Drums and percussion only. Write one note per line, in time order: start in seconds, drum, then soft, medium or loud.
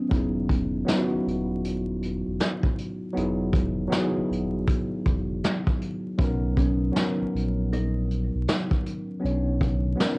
0.11 kick loud
0.11 closed hi-hat medium
0.49 kick medium
0.49 closed hi-hat medium
0.88 snare loud
0.88 closed hi-hat medium
1.28 closed hi-hat medium
1.65 closed hi-hat medium
2.03 closed hi-hat medium
2.40 snare loud
2.40 closed hi-hat medium
2.63 kick medium
2.78 closed hi-hat medium
3.17 closed hi-hat medium
3.53 kick medium
3.53 closed hi-hat medium
3.92 snare loud
3.92 closed hi-hat medium
4.32 closed hi-hat medium
4.68 kick medium
4.68 closed hi-hat medium
5.06 kick medium
5.06 closed hi-hat medium
5.44 snare loud
5.44 closed hi-hat medium
5.67 kick medium
5.82 closed hi-hat medium
6.19 kick loud
6.19 closed hi-hat medium
6.57 kick medium
6.57 closed hi-hat medium
6.96 snare loud
6.96 closed hi-hat medium
7.36 closed hi-hat medium
7.72 closed hi-hat medium
8.10 closed hi-hat medium
8.48 snare loud
8.48 closed hi-hat medium
8.71 kick medium
8.86 closed hi-hat medium
9.25 closed hi-hat medium
9.61 kick medium
9.61 closed hi-hat medium
10.00 snare loud
10.00 closed hi-hat medium